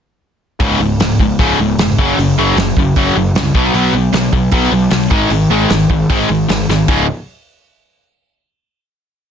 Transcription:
0.60 C#1 C#2 G#2 C#3, kick, open hi-hat
0.80 C#1 C#2 G#2
0.99 C#1 C#2 G#2, snare, open hi-hat
1.19 C#1 C#2 G#2, kick
1.39 C#1 C#2 G#2 C#3, kick, open hi-hat
1.59 C#1 C#2 G#2
1.78 F1 C#2 G#2, snare, open hi-hat
1.99 F#1 F#2 C#3 F#3, kick
2.17 F#1 F#2 C#3, open hi-hat
2.37 F#1 F#2 C#3 F#3
2.56 F#1 F#2 C#3, snare, open hi-hat
2.77 F#1 F#2 C#3, kick
2.96 F#1 F#2 C#3 F#3, kick, open hi-hat
3.15 F#1 F#2 C#3
3.35 C2 F#2 C#3, snare, open hi-hat
3.55 B1 B2 F#3 B3, kick
3.74 B1 B2 F#3 B3, open hi-hat
3.93 B1 B2 F#3
4.13 B1 B2 F#3, snare, open hi-hat
4.32 B1 B2 F#3, kick
4.51 B1 B2 F#3 B3, kick, open hi-hat
4.71 B1 B2 F#3
4.91 B1 B2 F#3, snare, open hi-hat
5.10 G#1 G#2 D#3 G#3, kick
5.30 G#1 G#2 D#3, open hi-hat
5.50 G#1 G#2 D#3 G#3
5.70 G#1 G#2 D#3, snare, open hi-hat
5.90 G#1 G#2 D#3, kick
6.10 G#1 G#2 D#3 G#3, kick, open hi-hat
6.29 G#1 G#2 D#3
6.49 G#1 G#2 D#3, snare, open hi-hat
6.69 G#1 G#2 D#3, snare
6.88 C#1 C#2 G#2 C#3 G#3 F4, kick, crash

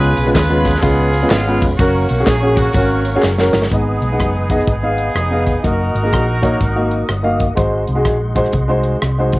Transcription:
Already playing: C#2 C#3 G#3 B3 C#4 F4 G#4 B4 C#5 F5 B5
0.17 B1, ride, tambourine
0.25 G#3 B3 C#4 F4 B4
0.32 D#2 F4 G#4 B4, kick
0.36 snare, clap, ride, tambourine
0.50 G#3 B3 C#4 F4 B4
0.65 kick, snare, ride, tambourine
0.75 snare
0.79 C#2 G#3 B3 C#4 F4 G#4 B4, kick, ride, tambourine
1.13 ride, tambourine
1.22 G#3 B3 C#4 F4 B4
1.29 G#1 G#3 B3 F4, snare, clap, ride, tambourine
1.47 G#3 B3 C#4 F4 B4
1.62 F1, kick, ride, tambourine
1.77 F#1 A#3 C#4 F#4 A#4 F#5 C#6, kick, ride, tambourine
1.81 A#4
2.09 B1, ride, tambourine
2.20 C#4 F#4 G#4
2.26 A#1 G#4, kick, snare, clap, ride, tambourine
2.42 C#4 F#4 G#4
2.56 A#3 C#4 F#4, kick, ride, tambourine
2.73 G#1 C#4 F#4 A#4, kick, ride, tambourine
3.05 ride, tambourine
3.16 C#4 F#4 G#4
3.23 F#1, snare, clap, tambourine
3.38 C#4 F#4 A#4, snare
3.53 G1, snare, tambourine
3.62 snare
3.70 G#1 G#2 B3 D#4 G#4 B4 D#5 G#5 D#6, kick, closed hi-hat
4.02 B1, closed hi-hat
4.12 B3 D#4 G#4 F#5
4.20 F#1, kick, cross-stick, closed hi-hat
4.50 B3 D#4 G#4 D#5, kick, cross-stick, closed hi-hat
4.60 cross-stick
4.67 G#1 B3 D#4 G#4, kick, closed hi-hat
4.83 B3 D#4 G#4 F5
4.98 closed hi-hat
5.15 F1, cross-stick, closed hi-hat
5.31 B3 D#4 G#4 F5
5.46 kick, closed hi-hat
5.63 F#1 A#3 D#4 F#4 A#4 D#5 F#5, kick, closed hi-hat
5.95 G#1, closed hi-hat
6.03 A#3 D#4 F#4 G#4
6.13 A#1, kick, cross-stick, closed hi-hat
6.42 A#3 D#4 F#4 C#5, kick, closed hi-hat
6.61 G#1, kick, closed hi-hat
6.76 A#3 D#4 F#4 A#4
6.91 closed hi-hat
7.09 G1, cross-stick, closed hi-hat
7.23 A#3 D#4 F#4 F5
7.40 kick, closed hi-hat
7.55 G#1 G#2 G#3 D#4 F#4 G#4 C5 C6, kick, closed hi-hat
7.87 C2, closed hi-hat
7.95 G#3 D#4 F#4 G#4
8.05 A#1, kick, cross-stick, closed hi-hat
8.35 G#3 D#4 F#4 C5, kick, closed hi-hat
8.45 cross-stick
8.53 C2, kick, closed hi-hat
8.68 G#3 D#4 F#4 C5
8.83 closed hi-hat
9.02 C2, cross-stick, closed hi-hat
9.18 G#3 D#4 F#4 C5
9.32 kick, closed hi-hat

